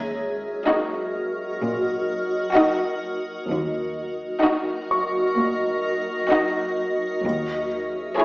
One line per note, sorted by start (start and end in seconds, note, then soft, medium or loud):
0.00 0.49 D#2 medium
0.00 3.47 F#4 soft
0.00 3.47 A#4 soft
0.00 3.48 D#5 soft
0.00 2.04 A#5 soft
0.00 2.04 A#6 soft
0.67 1.38 D#4 soft
0.67 1.38 F#4 soft
0.67 1.38 D#5 soft
1.61 2.37 A#2 medium
2.54 3.26 D#4 soft
2.54 3.26 F#4 soft
2.54 3.25 D#5 soft
3.48 4.24 D#2 medium
3.48 7.19 F#4 soft
3.48 7.19 A#4 soft
3.48 7.20 D#5 medium
4.42 5.13 D#4 soft
4.42 5.14 F#4 soft
4.42 5.13 D#5 soft
4.91 7.67 C#6 soft
5.36 6.12 A#2 medium
6.29 7.01 D#4 soft
6.29 7.00 F#4 soft
6.29 7.01 D#5 soft
7.23 7.99 D#2 medium
7.23 7.99 D#2 soft
7.23 8.25 G#4 soft
7.23 8.25 C#5 soft
7.23 8.25 E5 medium
8.17 8.25 E4 soft
8.17 8.25 G#4 soft
8.17 8.25 C#5 soft